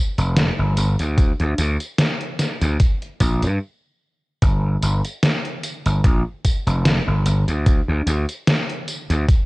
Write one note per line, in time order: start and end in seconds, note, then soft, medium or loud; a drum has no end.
0.18 0.50 F1 loud
0.18 closed hi-hat soft
0.18 tambourine soft
0.37 snare loud
0.37 closed hi-hat medium
0.37 tambourine soft
0.59 0.74 G1 medium
0.77 0.95 G1 medium
0.77 closed hi-hat medium
0.77 tambourine medium
0.99 1.31 D2 medium
0.99 closed hi-hat soft
0.99 tambourine soft
1.18 kick loud
1.18 closed hi-hat medium
1.18 tambourine soft
1.40 1.55 D2 medium
1.40 closed hi-hat soft
1.58 1.76 D2 medium
1.58 closed hi-hat medium
1.58 tambourine medium
1.80 closed hi-hat soft
1.80 tambourine soft
1.98 snare loud
1.98 closed hi-hat medium
1.98 tambourine soft
2.21 closed hi-hat soft
2.39 snare medium
2.39 closed hi-hat medium
2.39 tambourine medium
2.61 2.76 D2 medium
2.61 closed hi-hat medium
2.61 tambourine soft
2.80 kick loud
2.80 closed hi-hat medium
2.80 tambourine soft
3.02 closed hi-hat soft
3.20 3.44 A#1 loud
3.20 kick medium
3.20 closed hi-hat medium
3.20 tambourine medium
3.43 3.57 G2 loud
3.43 closed hi-hat medium
3.43 tambourine soft
4.42 4.76 G1 medium
4.42 kick loud
4.42 closed hi-hat medium
4.42 tambourine soft
4.82 5.00 G1 medium
4.82 closed hi-hat medium
4.82 tambourine medium
5.05 closed hi-hat medium
5.05 tambourine soft
5.23 snare loud
5.23 closed hi-hat medium
5.23 tambourine soft
5.45 closed hi-hat soft
5.63 closed hi-hat medium
5.63 tambourine medium
5.86 6.01 G1 medium
5.86 closed hi-hat medium
5.86 tambourine soft
6.04 6.22 A#1 medium
6.04 kick loud
6.04 closed hi-hat medium
6.04 tambourine soft
6.45 kick medium
6.45 closed hi-hat medium
6.45 tambourine medium
6.67 6.99 F1 medium
6.67 closed hi-hat medium
6.67 tambourine soft
6.85 snare loud
6.85 closed hi-hat medium
6.85 tambourine soft
7.07 7.22 G1 medium
7.26 7.44 G1 loud
7.26 closed hi-hat medium
7.26 tambourine medium
7.48 7.80 D2 medium
7.48 closed hi-hat medium
7.48 tambourine soft
7.66 kick loud
7.66 closed hi-hat medium
7.66 tambourine soft
7.88 8.03 D2 medium
8.06 8.25 D2 medium
8.06 closed hi-hat medium
8.06 tambourine medium
8.29 closed hi-hat medium
8.29 tambourine soft
8.47 snare loud
8.47 closed hi-hat medium
8.47 tambourine soft
8.69 closed hi-hat soft
8.88 closed hi-hat medium
8.88 tambourine medium
9.10 9.25 D2 medium
9.10 closed hi-hat medium
9.10 tambourine soft
9.28 kick loud
9.28 closed hi-hat medium
9.28 tambourine soft